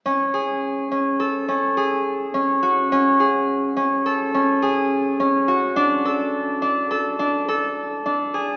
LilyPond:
\new Staff \with { instrumentName = "Harp" } { \time 5/4 \key fis \minor \tempo 4 = 105 cis'8 gis'4 cis'8 a'8 cis'8 gis'4 cis'8 fis'8 | cis'8 gis'4 cis'8 a'8 cis'8 gis'4 cis'8 fis'8 | d'8 a'4 d'8 a'8 d'8 a'4 d'8 gis'8 | }